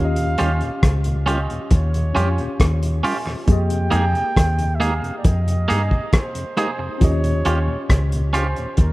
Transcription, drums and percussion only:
0.16 closed hi-hat
0.38 closed hi-hat
0.61 closed hi-hat
0.83 kick, cross-stick, closed hi-hat
1.04 closed hi-hat
1.27 closed hi-hat
1.50 closed hi-hat
1.71 kick, closed hi-hat
1.94 closed hi-hat
2.16 closed hi-hat
2.38 closed hi-hat
2.60 kick, cross-stick, closed hi-hat
2.83 closed hi-hat
3.04 open hi-hat
3.27 cross-stick
3.48 kick, closed hi-hat
3.70 closed hi-hat
3.92 closed hi-hat
4.15 closed hi-hat
4.37 kick, cross-stick, closed hi-hat
4.59 closed hi-hat
4.81 closed hi-hat
5.04 closed hi-hat
5.24 kick, closed hi-hat
5.48 closed hi-hat
5.70 closed hi-hat
5.91 kick
6.13 kick, cross-stick, closed hi-hat
6.35 closed hi-hat
6.57 closed hi-hat
7.01 kick, closed hi-hat
7.24 closed hi-hat
7.45 closed hi-hat
7.90 kick, cross-stick, closed hi-hat
8.12 closed hi-hat
8.34 closed hi-hat
8.56 closed hi-hat
8.77 kick, closed hi-hat

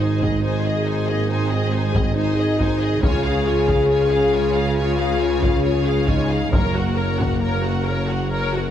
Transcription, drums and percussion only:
0.22 taiko
1.95 taiko
2.60 taiko
3.03 taiko
3.68 taiko
5.43 taiko
6.08 taiko
6.53 taiko
7.20 taiko

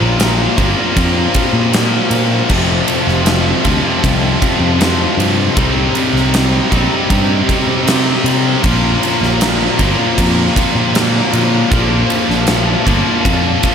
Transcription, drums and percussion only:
0.20 snare, ride
0.58 kick, ride
0.97 kick, ride
1.34 kick, ride
1.73 snare, ride
2.11 ride
2.49 kick, crash
2.88 ride
3.08 snare
3.26 snare, ride
3.65 kick, ride
4.04 kick, ride
4.42 kick, ride
4.81 snare, ride
5.20 ride
5.57 kick, ride
5.95 ride
6.16 snare
6.34 snare, ride
6.72 kick, ride
7.10 kick, ride
7.49 kick, ride
7.87 snare, ride
8.26 ride
8.64 kick, ride
9.03 ride
9.23 snare
9.41 snare, ride
9.79 kick, ride
10.18 kick, ride
10.56 kick, ride
10.95 snare, ride
11.33 ride
11.72 kick, ride
12.10 ride
12.30 snare
12.47 snare, ride
12.87 kick, ride
13.25 kick, ride
13.63 kick, ride

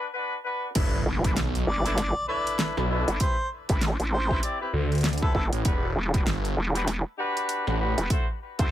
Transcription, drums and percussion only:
0.75 kick, closed hi-hat, crash
1.24 kick, closed hi-hat
1.37 snare, closed hi-hat
1.55 closed hi-hat
1.86 closed hi-hat
1.98 snare, closed hi-hat
2.47 closed hi-hat
2.59 snare, closed hi-hat
2.77 snare
3.08 closed hi-hat
3.20 kick, closed hi-hat
3.69 kick, closed hi-hat
3.81 snare, closed hi-hat
4.00 closed hi-hat
4.31 kick
4.43 closed hi-hat
4.92 closed hi-hat
4.95 closed hi-hat
4.98 closed hi-hat
5.01 snare, closed hi-hat
5.04 closed hi-hat
5.08 closed hi-hat
5.13 closed hi-hat
5.18 closed hi-hat
5.22 kick
5.35 kick
5.53 closed hi-hat
5.65 kick, closed hi-hat
6.14 kick, closed hi-hat
6.27 snare, closed hi-hat
6.45 closed hi-hat
6.75 closed hi-hat
6.88 snare, closed hi-hat
7.37 closed hi-hat
7.49 closed hi-hat
7.67 snare
7.98 closed hi-hat
8.10 kick, closed hi-hat
8.59 kick, closed hi-hat

